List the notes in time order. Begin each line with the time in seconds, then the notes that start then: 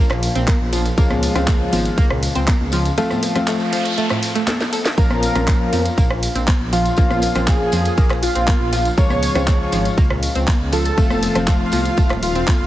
Already playing: A#1 F3 A#3 C#4 F4
0.10 A#2 A#3, cross-stick, clap
0.23 open hi-hat, ride, tambourine
0.35 A#1 C4 C5, closed hi-hat, tambourine
0.47 A#3 A#4, kick, clap, closed hi-hat, ride, tambourine, high conga
0.60 A#1
0.73 F3 F4, open hi-hat, ride, tambourine
0.85 closed hi-hat, tambourine
0.98 C#2 F3 G#3 A#3 C#4 F4 A#4, kick, closed hi-hat, ride, tambourine
1.10 A#2 A#3, cross-stick, tambourine, high conga
1.23 open hi-hat, ride, tambourine
1.35 C#2 F3 G#3 C4 C#4 F4 C5, cross-stick, closed hi-hat, tambourine
1.47 A#3 A#4, kick, clap, closed hi-hat, ride, tambourine
1.73 G#1 F3 F4, open hi-hat, ride, tambourine, high conga
1.85 closed hi-hat, tambourine
1.98 C#2 A#3 A#4, kick, closed hi-hat, ride, tambourine
2.10 A#2 A#3, cross-stick
2.23 open hi-hat, ride, tambourine
2.35 C#2 C4 C5, closed hi-hat, tambourine
2.47 A#3 A#4, kick, clap, closed hi-hat, ride, tambourine, high conga
2.61 C#2
2.72 F3 F4, open hi-hat, ride, tambourine
2.85 closed hi-hat, tambourine
2.98 F3 A3 C4 F4 A4, closed hi-hat, ride, tambourine, noise sweep
3.10 A2 A3, cross-stick, tambourine, high conga
3.23 open hi-hat, ride, tambourine, cowbell
3.35 F3 A3 C4 F4 C5, cross-stick, closed hi-hat, tambourine
3.47 A3 A4, clap, closed hi-hat, ride, tambourine
3.60 tambourine
3.73 F3 F4, open hi-hat, ride, tambourine
3.85 closed hi-hat, tambourine
3.97 A3 A4, closed hi-hat, ride, tambourine
4.10 A2 A3, cross-stick, clap, tambourine
4.23 open hi-hat, ride, tambourine
4.35 A3 A4, closed hi-hat, tambourine
4.47 A4 A5, snare, clap, closed hi-hat, ride, tambourine, high conga
4.60 snare, tambourine
4.73 A4 A5, open hi-hat, ride, tambourine
4.85 snare, closed hi-hat
4.98 A#1 F3 A#3 C#4 F4 A#4 A#5, kick, closed hi-hat, ride, tambourine
5.10 A#2 A#3, cross-stick, tambourine, high conga
5.23 open hi-hat, ride, tambourine
5.35 A#1 F3 A#3 C4 C#4 F4 C5, cross-stick, closed hi-hat, tambourine
5.47 A#3 A#4, kick, clap, closed hi-hat, ride, tambourine
5.73 F2 F3 F4, open hi-hat, ride, tambourine, high conga
5.86 closed hi-hat, tambourine
5.98 A#1 A#3 A#4, kick, closed hi-hat, ride, tambourine
6.11 A#2 A#3, cross-stick
6.23 open hi-hat, ride, tambourine
6.35 A#1 C4 C5, closed hi-hat, tambourine
6.48 A#3 A#4, kick, clap, closed hi-hat, ride, tambourine, high conga
6.60 A#1
6.73 F3 F4 F5, open hi-hat, ride, tambourine
6.85 closed hi-hat, tambourine
6.96 A#1 F3 A#3 C#4 F4 A#4, kick, closed hi-hat, ride, tambourine
7.10 A#2 A#3, cross-stick, tambourine, high conga
7.22 open hi-hat, ride, tambourine, cowbell
7.35 A#1 F3 A#3 C4 C#4 F4 C5, cross-stick, closed hi-hat, tambourine
7.47 A#3 G#4 A#4 G#5, kick, clap, closed hi-hat, ride, tambourine
7.72 F2 F3 F4, open hi-hat, ride, tambourine
7.85 closed hi-hat, tambourine
7.97 A#1 A#3 A#4, kick, closed hi-hat, ride, tambourine
8.10 A#2 A#3, cross-stick, clap
8.23 F4 F5, open hi-hat, ride, tambourine
8.35 A#1 C4 C5, closed hi-hat, tambourine
8.47 A#3 A#4, kick, clap, closed hi-hat, ride, tambourine, high conga
8.60 A#1
8.73 F3 F4, open hi-hat, ride, tambourine
8.85 closed hi-hat, tambourine
8.97 C#2 F3 G#3 A#3 C#4 F4 A#4 C#5 C#6, kick, closed hi-hat, ride, tambourine
9.10 A#2 A#3, cross-stick, tambourine, high conga
9.23 open hi-hat, ride, tambourine
9.35 C#2 F3 G#3 C4 C#4 F4 C5, cross-stick, closed hi-hat, tambourine
9.47 A#3 A#4, kick, clap, closed hi-hat, ride, tambourine
9.72 G#1 F3 F4, open hi-hat, ride, tambourine
9.85 closed hi-hat, tambourine
9.97 C#2 A#3 A#4, kick, closed hi-hat, ride, tambourine
10.10 A#2 A#3, cross-stick
10.23 open hi-hat, ride, tambourine
10.35 C#2 C4 C5, closed hi-hat, tambourine
10.47 A#3 A#4, kick, clap, ride, tambourine, high conga
10.60 C#2
10.72 F3 F4 A4 A5, open hi-hat, ride, tambourine
10.85 closed hi-hat, tambourine
10.98 F1 F3 A3 C4 F4 A4, kick, closed hi-hat, ride, tambourine
11.10 A2 A3, cross-stick, tambourine, high conga
11.23 open hi-hat, ride, tambourine, cowbell
11.35 F1 F3 A3 C4 F4 C5, cross-stick, closed hi-hat, tambourine
11.47 A3 F4 A4 F5, kick, clap, closed hi-hat, ride, tambourine
11.72 C2 F3 F4, open hi-hat, ride, tambourine, high conga
11.85 closed hi-hat, tambourine
11.97 D#1 A3 A4, kick, closed hi-hat, ride, tambourine
12.10 A2 A3, cross-stick, clap
12.22 F4 F5, open hi-hat, ride, tambourine
12.35 F1 C4 C5, closed hi-hat, tambourine
12.47 A3 A4, kick, clap, closed hi-hat, ride, tambourine, high conga
12.60 F1